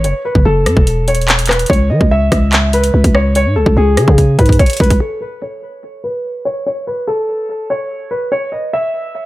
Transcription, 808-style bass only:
0, 0, Header, 1, 2, 480
1, 0, Start_track
1, 0, Tempo, 413793
1, 49, Time_signature, 4, 2, 24, 8
1, 10738, End_track
2, 0, Start_track
2, 0, Title_t, "808-style bass"
2, 0, Program_c, 0, 38
2, 48, Note_on_c, 0, 30, 102
2, 163, Note_off_c, 0, 30, 0
2, 408, Note_on_c, 0, 30, 103
2, 521, Note_off_c, 0, 30, 0
2, 528, Note_on_c, 0, 30, 111
2, 768, Note_on_c, 0, 42, 99
2, 785, Note_off_c, 0, 30, 0
2, 883, Note_off_c, 0, 42, 0
2, 889, Note_on_c, 0, 28, 104
2, 1926, Note_off_c, 0, 28, 0
2, 1969, Note_on_c, 0, 37, 109
2, 2209, Note_on_c, 0, 52, 98
2, 2226, Note_off_c, 0, 37, 0
2, 2323, Note_off_c, 0, 52, 0
2, 2328, Note_on_c, 0, 37, 98
2, 2674, Note_off_c, 0, 37, 0
2, 2689, Note_on_c, 0, 37, 101
2, 3380, Note_off_c, 0, 37, 0
2, 3409, Note_on_c, 0, 37, 112
2, 3524, Note_off_c, 0, 37, 0
2, 3530, Note_on_c, 0, 37, 104
2, 4009, Note_on_c, 0, 44, 97
2, 4027, Note_off_c, 0, 37, 0
2, 4130, Note_on_c, 0, 37, 102
2, 4147, Note_off_c, 0, 44, 0
2, 4241, Note_off_c, 0, 37, 0
2, 4248, Note_on_c, 0, 37, 104
2, 4364, Note_off_c, 0, 37, 0
2, 4370, Note_on_c, 0, 37, 110
2, 4609, Note_on_c, 0, 49, 102
2, 4627, Note_off_c, 0, 37, 0
2, 4723, Note_off_c, 0, 49, 0
2, 4729, Note_on_c, 0, 49, 110
2, 5075, Note_off_c, 0, 49, 0
2, 5089, Note_on_c, 0, 44, 106
2, 5319, Note_off_c, 0, 44, 0
2, 5569, Note_on_c, 0, 37, 108
2, 5799, Note_off_c, 0, 37, 0
2, 10738, End_track
0, 0, End_of_file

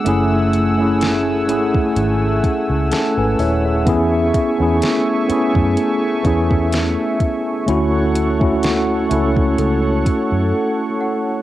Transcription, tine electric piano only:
0, 0, Header, 1, 2, 480
1, 0, Start_track
1, 0, Key_signature, 3, "minor"
1, 0, Tempo, 952381
1, 30, Time_signature, 4, 2, 24, 8
1, 5757, End_track
2, 0, Start_track
2, 0, Title_t, "Tine electric piano"
2, 0, Program_c, 0, 4
2, 0, Control_c, 0, 64, 127
2, 22, Note_on_c, 0, 57, 112
2, 28, Note_on_c, 0, 61, 99
2, 36, Control_c, 0, 64, 0
2, 36, Note_on_c, 0, 64, 97
2, 42, Note_on_c, 0, 68, 124
2, 135, Control_c, 0, 64, 127
2, 365, Note_off_c, 0, 57, 0
2, 368, Note_off_c, 0, 61, 0
2, 372, Note_off_c, 0, 64, 0
2, 374, Note_off_c, 0, 68, 0
2, 391, Note_on_c, 0, 57, 87
2, 397, Note_on_c, 0, 61, 82
2, 405, Note_on_c, 0, 64, 79
2, 411, Note_on_c, 0, 68, 92
2, 719, Note_off_c, 0, 57, 0
2, 722, Note_off_c, 0, 61, 0
2, 726, Note_off_c, 0, 64, 0
2, 729, Note_off_c, 0, 68, 0
2, 742, Note_on_c, 0, 57, 88
2, 748, Note_on_c, 0, 61, 81
2, 754, Note_on_c, 0, 64, 77
2, 762, Note_on_c, 0, 68, 96
2, 1469, Note_off_c, 0, 61, 0
2, 1472, Note_off_c, 0, 64, 0
2, 1473, Note_on_c, 0, 69, 68
2, 1473, Note_on_c, 0, 81, 73
2, 1476, Note_off_c, 0, 68, 0
2, 1476, Note_on_c, 0, 61, 58
2, 1592, Note_off_c, 0, 81, 0
2, 1594, Note_off_c, 0, 69, 0
2, 1596, Note_off_c, 0, 61, 0
2, 1602, Note_on_c, 0, 71, 68
2, 1602, Note_on_c, 0, 80, 70
2, 1636, Note_off_c, 0, 57, 0
2, 1703, Note_off_c, 0, 80, 0
2, 1706, Note_off_c, 0, 71, 0
2, 1711, Note_on_c, 0, 76, 74
2, 1712, Note_on_c, 0, 73, 71
2, 1714, Note_on_c, 0, 64, 61
2, 1834, Note_off_c, 0, 73, 0
2, 1834, Note_off_c, 0, 76, 0
2, 1835, Note_off_c, 0, 64, 0
2, 1840, Note_on_c, 0, 76, 67
2, 1843, Note_on_c, 0, 68, 56
2, 1941, Note_on_c, 0, 59, 116
2, 1947, Note_on_c, 0, 61, 97
2, 1954, Note_on_c, 0, 64, 99
2, 1955, Note_off_c, 0, 68, 0
2, 1957, Control_c, 0, 64, 0
2, 1961, Note_on_c, 0, 68, 123
2, 2040, Control_c, 0, 64, 127
2, 2068, Note_off_c, 0, 76, 0
2, 2284, Note_off_c, 0, 59, 0
2, 2287, Note_off_c, 0, 61, 0
2, 2291, Note_off_c, 0, 64, 0
2, 2294, Note_off_c, 0, 68, 0
2, 2310, Note_on_c, 0, 59, 80
2, 2317, Note_on_c, 0, 61, 76
2, 2325, Note_on_c, 0, 64, 77
2, 2331, Note_on_c, 0, 68, 86
2, 2639, Note_off_c, 0, 59, 0
2, 2642, Note_off_c, 0, 61, 0
2, 2646, Note_off_c, 0, 64, 0
2, 2649, Note_off_c, 0, 68, 0
2, 2662, Note_on_c, 0, 59, 85
2, 2669, Note_on_c, 0, 61, 84
2, 2675, Note_on_c, 0, 64, 79
2, 2682, Note_on_c, 0, 68, 97
2, 3111, Note_off_c, 0, 59, 0
2, 3114, Note_off_c, 0, 61, 0
2, 3118, Note_off_c, 0, 64, 0
2, 3121, Note_off_c, 0, 68, 0
2, 3142, Note_on_c, 0, 59, 83
2, 3149, Note_on_c, 0, 61, 74
2, 3155, Note_on_c, 0, 64, 72
2, 3161, Note_on_c, 0, 68, 96
2, 3813, Note_off_c, 0, 59, 0
2, 3817, Note_off_c, 0, 61, 0
2, 3820, Note_off_c, 0, 64, 0
2, 3823, Note_off_c, 0, 68, 0
2, 3862, Note_on_c, 0, 57, 110
2, 3868, Note_on_c, 0, 61, 102
2, 3875, Note_on_c, 0, 64, 102
2, 3876, Control_c, 0, 64, 0
2, 3881, Note_on_c, 0, 66, 124
2, 3950, Control_c, 0, 64, 127
2, 4204, Note_off_c, 0, 57, 0
2, 4208, Note_off_c, 0, 61, 0
2, 4211, Note_off_c, 0, 64, 0
2, 4214, Note_off_c, 0, 66, 0
2, 4232, Note_on_c, 0, 57, 91
2, 4239, Note_on_c, 0, 61, 81
2, 4245, Note_on_c, 0, 64, 79
2, 4252, Note_on_c, 0, 66, 98
2, 4560, Note_off_c, 0, 57, 0
2, 4563, Note_off_c, 0, 61, 0
2, 4566, Note_off_c, 0, 64, 0
2, 4570, Note_off_c, 0, 66, 0
2, 4583, Note_on_c, 0, 57, 85
2, 4590, Note_on_c, 0, 61, 83
2, 4597, Note_on_c, 0, 64, 79
2, 4604, Note_on_c, 0, 69, 93
2, 5476, Note_off_c, 0, 57, 0
2, 5480, Note_off_c, 0, 61, 0
2, 5483, Note_off_c, 0, 64, 0
2, 5487, Note_off_c, 0, 69, 0
2, 5757, End_track
0, 0, End_of_file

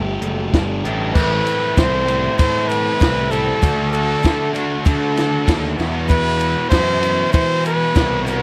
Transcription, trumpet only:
0, 0, Header, 1, 2, 480
1, 0, Start_track
1, 0, Tempo, 619195
1, 892, Time_signature, 4, 2, 24, 8
1, 6530, End_track
2, 0, Start_track
2, 0, Title_t, "Trumpet"
2, 0, Program_c, 0, 56
2, 0, Note_on_c, 0, 69, 84
2, 375, Note_off_c, 0, 69, 0
2, 892, Note_on_c, 0, 71, 114
2, 1384, Note_on_c, 0, 72, 101
2, 1396, Note_off_c, 0, 71, 0
2, 1843, Note_off_c, 0, 72, 0
2, 1848, Note_on_c, 0, 72, 106
2, 2077, Note_on_c, 0, 71, 103
2, 2089, Note_off_c, 0, 72, 0
2, 2565, Note_on_c, 0, 69, 95
2, 2576, Note_off_c, 0, 71, 0
2, 3034, Note_off_c, 0, 69, 0
2, 3039, Note_on_c, 0, 69, 103
2, 3495, Note_off_c, 0, 69, 0
2, 3534, Note_on_c, 0, 66, 75
2, 3773, Note_on_c, 0, 69, 89
2, 3785, Note_off_c, 0, 66, 0
2, 4492, Note_off_c, 0, 69, 0
2, 4727, Note_on_c, 0, 71, 117
2, 5178, Note_off_c, 0, 71, 0
2, 5190, Note_on_c, 0, 72, 111
2, 5649, Note_off_c, 0, 72, 0
2, 5682, Note_on_c, 0, 72, 111
2, 5909, Note_off_c, 0, 72, 0
2, 5943, Note_on_c, 0, 71, 109
2, 6385, Note_off_c, 0, 71, 0
2, 6429, Note_on_c, 0, 71, 98
2, 6530, Note_off_c, 0, 71, 0
2, 6530, End_track
0, 0, End_of_file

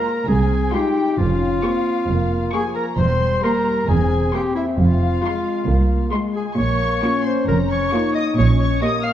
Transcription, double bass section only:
0, 0, Header, 1, 2, 480
1, 0, Start_track
1, 0, Key_signature, -4, "minor"
1, 0, Tempo, 449775
1, 1267, Time_signature, 4, 2, 24, 8
1, 9744, End_track
2, 0, Start_track
2, 0, Title_t, "Double bass section"
2, 0, Program_c, 0, 48
2, 303, Note_on_c, 0, 36, 67
2, 684, Note_off_c, 0, 36, 0
2, 1269, Note_on_c, 0, 29, 68
2, 1649, Note_off_c, 0, 29, 0
2, 2222, Note_on_c, 0, 29, 67
2, 2603, Note_off_c, 0, 29, 0
2, 3184, Note_on_c, 0, 28, 67
2, 3566, Note_off_c, 0, 28, 0
2, 4151, Note_on_c, 0, 28, 68
2, 4529, Note_off_c, 0, 28, 0
2, 5102, Note_on_c, 0, 29, 71
2, 5478, Note_off_c, 0, 29, 0
2, 6057, Note_on_c, 0, 36, 70
2, 6430, Note_off_c, 0, 36, 0
2, 7019, Note_on_c, 0, 34, 73
2, 7398, Note_off_c, 0, 34, 0
2, 7975, Note_on_c, 0, 29, 67
2, 8355, Note_off_c, 0, 29, 0
2, 8942, Note_on_c, 0, 34, 75
2, 9317, Note_off_c, 0, 34, 0
2, 9744, End_track
0, 0, End_of_file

